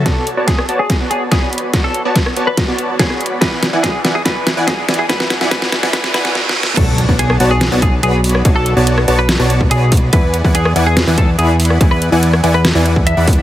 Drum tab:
CC |------------------------------------------------------------------------------------------------|------------------------------------------------------------------------------------------------|------------------------------------------------------------------------------------------------|------------------------------------------------------------------------------------------------|
HH |x-----------x-----------x-----------x-----------x-----------x-----------x-----------x--x--------|x-----------x-----------x-----------x-----------x-----------x-----------x-----------x--x--------|x-----------x-----------x-----------x-----------x-----------x-----------x-----------x--x--------|x-----------x-----------x-----------x-----------x-----------x-----------------------------------|
SD |o-----------------------o-----r-----------------o-----------------------o-----------------------|o-----------------------o-----r-----------------o-----------------------o-----r-----------------|o-----------o-----------o-----------o-----------o-----------o-----------o-----------o-----------|o-----o-----o-----o-----o-----o-----o-----o-----o-----o-----o-----o-----o-------o-------o-------|
BD |o-----------------------o-----------------------o-----------------------o-----------------------|o-----------------------o-----------------------o-----------------------o-----------------------|o-----------------------o-----------------------o-----------------------o-----------------------|o-----------------------o-----------------------o-----------------------------------------------|

CC |x-----------------------------------------------------------------------------------------------|------------------------------------------------------------------------------------------------|------------------------------------------------------------------------------------------------|------------------------------------------------------------------------------------------------|
HH |x-----------x-----------x-----------x-----------x-----------x-----------x-----------o--x--------|x-----------x-----------x-----------x-----------x-----------x-----------x-----------o--x--------|x-----------x-----------x-----------x-----------x-----------x-----------x-----------o--x--------|x-----------x-----------x-----------x-----------x-----------x-----------x-----------o--x--------|
SD |------------------------------r-----------------o-----------------------------------------r-----|------------------------------r-----------------o-----------------------------------------------|------------------------------r-----------------o-----------------------------------------r-----|------------------------------r-----------------o-----------------------------------------------|
BD |o-----------------o-----------------------------------------o-----------------------------------|o-----------------------------------------------------------------o-----------------o-----------|o-----------------o-----------------------------------------o-----------------------------------|o-----------------------------------------------------------------o-----------------o-----------|